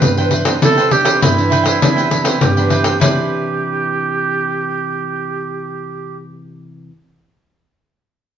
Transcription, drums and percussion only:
0.02 pandeiro medium
0.17 pandeiro soft
0.31 pandeiro medium
0.45 pandeiro medium
0.62 pandeiro medium
0.78 pandeiro soft
0.91 pandeiro medium
1.05 pandeiro medium
1.22 pandeiro medium
1.38 pandeiro soft
1.52 pandeiro medium
1.66 pandeiro medium
1.82 pandeiro medium
1.98 pandeiro soft
2.11 pandeiro medium
2.25 pandeiro medium
2.41 pandeiro medium
2.57 pandeiro soft
2.70 pandeiro medium
2.84 pandeiro medium
3.01 pandeiro loud

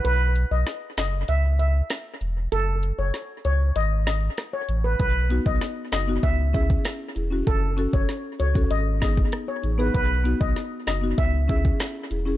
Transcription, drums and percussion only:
0.05 closed hi-hat medium
0.36 closed hi-hat medium
0.67 snare medium
0.67 closed hi-hat medium
0.97 snare loud
0.97 closed hi-hat medium
1.28 closed hi-hat medium
1.59 closed hi-hat medium
1.90 cross-stick medium
1.90 snare loud
1.90 closed hi-hat medium
2.21 closed hi-hat soft
2.52 closed hi-hat medium
2.83 closed hi-hat medium
3.14 snare medium
3.14 closed hi-hat medium
3.45 closed hi-hat medium
3.76 closed hi-hat medium
4.07 snare loud
4.07 closed hi-hat medium
4.38 cross-stick loud
4.38 snare medium
4.38 closed hi-hat medium
4.69 closed hi-hat soft
5.00 kick loud
5.00 closed hi-hat medium
5.30 closed hi-hat medium
5.46 kick medium
5.61 snare medium
5.61 closed hi-hat medium
5.92 snare loud
5.92 closed hi-hat medium
6.23 kick medium
6.23 closed hi-hat medium
6.54 kick medium
6.54 closed hi-hat medium
6.70 kick loud
6.85 cross-stick loud
6.85 snare loud
6.85 closed hi-hat medium
7.16 closed hi-hat soft
7.47 kick loud
7.47 closed hi-hat medium
7.78 closed hi-hat medium
7.93 kick medium
8.09 snare medium
8.09 closed hi-hat medium
8.40 closed hi-hat medium
8.55 kick medium
8.71 closed hi-hat medium
9.02 kick medium
9.02 snare loud
9.02 closed hi-hat medium
9.17 kick loud
9.32 cross-stick loud
9.32 closed hi-hat medium
9.63 closed hi-hat soft
9.94 kick loud
9.94 closed hi-hat medium
10.25 closed hi-hat medium
10.41 kick medium
10.56 snare medium
10.56 closed hi-hat medium
10.87 snare loud
10.87 closed hi-hat medium
11.18 kick medium
11.18 closed hi-hat medium
11.49 kick medium
11.49 closed hi-hat medium
11.65 kick medium
11.80 cross-stick medium
11.80 snare loud
11.80 closed hi-hat medium
12.11 closed hi-hat soft

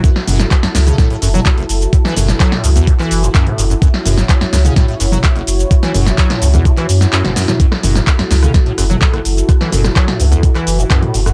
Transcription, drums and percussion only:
0.04 kick loud
0.04 closed hi-hat medium
0.04 shaker soft
0.16 snare medium
0.28 open hi-hat loud
0.28 mid tom medium
0.28 shaker medium
0.40 snare medium
0.40 shaker soft
0.51 kick loud
0.51 clap loud
0.51 closed hi-hat medium
0.51 shaker soft
0.63 snare medium
0.63 closed hi-hat medium
0.75 snare medium
0.75 open hi-hat medium
0.75 shaker medium
0.87 closed hi-hat soft
0.87 mid tom medium
0.87 shaker soft
0.98 kick loud
0.98 snare medium
0.98 closed hi-hat medium
0.98 shaker soft
1.10 closed hi-hat soft
1.22 open hi-hat loud
1.22 shaker medium
1.34 closed hi-hat soft
1.34 mid tom medium
1.34 shaker soft
1.46 kick loud
1.46 clap loud
1.46 closed hi-hat medium
1.46 shaker soft
1.58 closed hi-hat soft
1.69 open hi-hat medium
1.69 shaker medium
1.81 closed hi-hat soft
1.81 shaker soft
1.93 kick loud
1.93 closed hi-hat medium
1.93 shaker soft
2.05 snare medium
2.16 open hi-hat loud
2.16 mid tom medium
2.16 shaker medium
2.28 snare medium
2.28 closed hi-hat soft
2.28 shaker soft
2.40 kick loud
2.40 clap loud
2.40 closed hi-hat medium
2.40 shaker soft
2.52 snare medium
2.52 closed hi-hat medium
2.64 open hi-hat loud
2.64 shaker medium
2.76 closed hi-hat medium
2.76 shaker soft
2.87 kick loud
2.87 closed hi-hat medium
2.87 shaker soft
2.99 clap soft
2.99 closed hi-hat soft
3.11 open hi-hat loud
3.11 shaker medium
3.23 closed hi-hat soft
3.23 shaker soft
3.35 kick loud
3.35 clap loud
3.35 closed hi-hat medium
3.35 shaker soft
3.47 closed hi-hat soft
3.47 mid tom medium
3.58 open hi-hat medium
3.58 shaker medium
3.70 closed hi-hat soft
3.70 shaker soft
3.82 kick loud
3.82 closed hi-hat medium
3.82 shaker soft
3.94 snare medium
4.06 open hi-hat loud
4.06 mid tom medium
4.06 shaker medium
4.18 snare medium
4.18 shaker soft
4.29 kick loud
4.29 clap loud
4.29 closed hi-hat medium
4.29 shaker soft
4.41 snare medium
4.41 closed hi-hat medium
4.53 snare medium
4.53 open hi-hat medium
4.53 shaker medium
4.65 closed hi-hat medium
4.65 mid tom medium
4.65 shaker soft
4.76 kick loud
4.76 snare medium
4.76 closed hi-hat medium
4.76 shaker soft
4.88 closed hi-hat soft
5.00 open hi-hat loud
5.00 shaker medium
5.12 mid tom medium
5.12 shaker medium
5.24 kick loud
5.24 clap loud
5.24 closed hi-hat medium
5.24 shaker soft
5.36 closed hi-hat soft
5.47 open hi-hat medium
5.47 shaker medium
5.59 closed hi-hat soft
5.59 shaker soft
5.71 kick loud
5.71 closed hi-hat medium
5.71 shaker soft
5.83 snare medium
5.83 closed hi-hat soft
5.94 open hi-hat loud
5.94 mid tom medium
5.94 shaker medium
6.06 snare medium
6.06 closed hi-hat soft
6.06 shaker soft
6.18 kick loud
6.18 clap loud
6.18 closed hi-hat medium
6.18 shaker soft
6.30 snare medium
6.30 closed hi-hat medium
6.42 open hi-hat medium
6.42 shaker medium
6.54 closed hi-hat medium
6.54 mid tom medium
6.54 shaker soft
6.65 kick loud
6.65 closed hi-hat medium
6.65 shaker soft
6.77 clap soft
6.77 closed hi-hat soft
6.89 open hi-hat loud
6.89 shaker medium
7.01 snare medium
7.01 shaker soft
7.13 clap loud
7.13 closed hi-hat medium
7.13 shaker soft
7.25 snare medium
7.25 closed hi-hat soft
7.25 mid tom medium
7.36 snare medium
7.36 open hi-hat medium
7.36 shaker medium
7.48 snare medium
7.48 closed hi-hat soft
7.48 mid tom medium
7.48 shaker soft
7.60 kick loud
7.60 closed hi-hat medium
7.60 shaker soft
7.72 cross-stick medium
7.72 snare medium
7.83 open hi-hat loud
7.83 mid tom loud
7.83 shaker medium
7.95 snare medium
7.95 shaker soft
8.07 kick loud
8.07 cross-stick medium
8.07 clap loud
8.07 closed hi-hat medium
8.07 shaker soft
8.19 snare medium
8.19 closed hi-hat medium
8.31 snare medium
8.31 open hi-hat loud
8.31 shaker medium
8.43 cross-stick medium
8.43 closed hi-hat medium
8.43 mid tom medium
8.43 shaker soft
8.54 kick loud
8.54 snare medium
8.54 closed hi-hat medium
8.54 shaker soft
8.66 closed hi-hat soft
8.78 cross-stick medium
8.78 open hi-hat loud
8.78 shaker medium
8.90 closed hi-hat soft
8.90 mid tom loud
8.90 shaker soft
9.02 kick loud
9.02 clap loud
9.02 closed hi-hat medium
9.02 shaker soft
9.14 cross-stick medium
9.14 closed hi-hat soft
9.25 open hi-hat medium
9.25 shaker medium
9.37 closed hi-hat soft
9.37 shaker soft
9.49 kick loud
9.49 cross-stick medium
9.49 closed hi-hat medium
9.49 shaker soft
9.61 snare medium
9.72 open hi-hat loud
9.72 mid tom loud
9.72 shaker medium
9.84 cross-stick medium
9.84 snare medium
9.84 shaker soft
9.96 kick loud
9.96 clap loud
9.96 closed hi-hat medium
9.96 shaker soft
10.08 snare medium
10.08 closed hi-hat medium
10.20 open hi-hat loud
10.20 shaker medium
10.32 closed hi-hat medium
10.32 shaker soft
10.43 kick loud
10.43 closed hi-hat medium
10.43 shaker soft
10.55 cross-stick medium
10.55 clap soft
10.55 closed hi-hat soft
10.67 open hi-hat loud
10.67 shaker medium
10.79 closed hi-hat soft
10.79 shaker soft
10.91 kick loud
10.91 cross-stick medium
10.91 clap loud
10.91 closed hi-hat medium
10.91 shaker soft
11.03 closed hi-hat soft
11.03 mid tom medium
11.14 open hi-hat loud
11.14 shaker medium
11.26 cross-stick medium
11.26 closed hi-hat soft
11.26 shaker soft

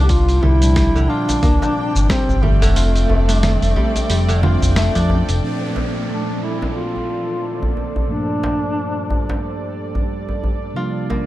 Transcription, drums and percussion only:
0.09 kick loud
0.09 open hi-hat medium
0.09 shaker medium
0.29 open hi-hat soft
0.29 shaker soft
0.43 djembe tone medium
0.43 low conga medium
0.62 open hi-hat soft
0.62 shaker medium
0.76 kick loud
0.76 snare medium
0.76 open hi-hat medium
0.76 shaker medium
0.96 shaker soft
1.28 open hi-hat soft
1.28 djembe slap soft
1.28 djembe tone medium
1.28 shaker medium
1.43 kick loud
1.43 open hi-hat medium
1.43 low conga medium
1.43 shaker soft
1.62 djembe slap medium
1.62 shaker soft
1.96 shaker medium
2.10 kick loud
2.10 snare loud
2.10 open hi-hat medium
2.10 shaker medium
2.29 djembe bass medium
2.29 shaker soft
2.43 djembe tone medium
2.43 low conga medium
2.62 open hi-hat soft
2.62 djembe bass medium
2.62 shaker medium
2.76 open hi-hat medium
2.76 shaker medium
2.95 open hi-hat soft
2.95 shaker soft
3.10 djembe tone medium
3.29 open hi-hat soft
3.29 shaker medium
3.43 snare medium
3.43 open hi-hat medium
3.43 low conga medium
3.43 shaker medium
3.62 open hi-hat soft
3.62 shaker soft
3.76 djembe bass medium
3.96 open hi-hat soft
3.96 djembe slap soft
3.96 djembe tone medium
3.96 shaker medium
4.10 open hi-hat medium
4.10 shaker medium
4.29 open hi-hat soft
4.29 shaker soft
4.43 djembe slap medium
4.43 low conga medium
4.62 open hi-hat soft
4.62 djembe slap soft
4.62 djembe tone soft
4.62 djembe bass medium
4.62 shaker medium
4.76 snare loud
4.76 open hi-hat medium
4.76 shaker medium
4.95 open hi-hat soft
4.95 djembe slap medium
4.95 djembe tone medium
4.95 shaker soft
5.09 djembe slap medium
5.09 djembe tone medium
5.09 djembe bass medium
5.29 open hi-hat soft
5.29 shaker medium
5.76 djembe slap medium
5.76 djembe tone medium
6.62 djembe slap soft
6.62 djembe tone medium
6.96 djembe tone soft
7.63 djembe bass medium
7.77 djembe tone medium
7.96 djembe bass medium
8.43 djembe slap medium
8.43 djembe tone medium
9.10 djembe bass medium
9.29 djembe slap medium
9.29 djembe tone medium
9.95 djembe bass medium
10.29 djembe tone medium
10.44 djembe bass medium
11.10 djembe slap medium
11.10 djembe tone medium

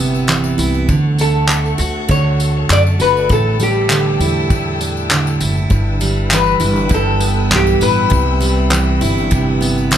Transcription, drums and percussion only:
0.14 tambourine soft
0.29 clap loud
0.29 tambourine medium
0.44 tambourine medium
0.59 tambourine medium
0.74 tambourine soft
0.89 kick loud
0.89 tambourine medium
1.18 tambourine medium
1.18 tambourine soft
1.48 clap loud
1.48 tambourine medium
1.66 tambourine soft
1.79 tambourine medium
1.79 tambourine soft
2.09 kick loud
2.09 tambourine medium
2.40 tambourine medium
2.70 clap loud
2.70 tambourine medium
2.87 tambourine medium
3.00 tambourine medium
3.17 tambourine soft
3.30 kick loud
3.30 tambourine medium
3.60 tambourine medium
3.60 tambourine soft
3.90 clap loud
3.90 tambourine medium
4.21 tambourine medium
4.21 tambourine soft
4.50 kick loud
4.50 tambourine medium
4.81 tambourine medium
4.97 tambourine soft
5.11 clap loud
5.11 tambourine medium
5.27 tambourine soft
5.40 tambourine medium
5.57 tambourine soft
5.71 kick loud
5.71 tambourine medium
6.00 tambourine soft
6.00 tambourine medium
6.31 clap loud
6.31 tambourine medium
6.46 tambourine soft
6.60 tambourine medium
6.60 tambourine soft
6.76 tambourine soft
6.91 kick loud
6.91 tambourine medium
7.20 tambourine medium
7.52 clap loud
7.52 tambourine medium
7.67 tambourine medium
7.81 tambourine medium
8.12 kick loud
8.12 tambourine medium
8.42 tambourine medium
8.42 tambourine soft
8.71 clap loud
8.71 tambourine medium
9.02 tambourine medium
9.04 tambourine soft
9.18 tambourine soft
9.32 kick loud
9.32 tambourine medium
9.62 tambourine medium
9.78 tambourine soft
9.92 clap loud
9.92 tambourine medium

